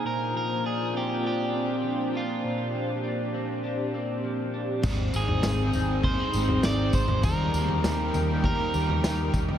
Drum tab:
CC |----------------|----------------|x---------------|----------------|
TB |----------------|----------------|x-x-x-x---x-x-x-|x-x-x-x---x-x-x-|
SD |----------------|----------------|----o-------o---|----o-------o---|
FT |----------------|----------------|o--o--o-o--o---o|o--o--o-o--o---o|
BD |----------------|----------------|o-------o-----o-|o-------o-----o-|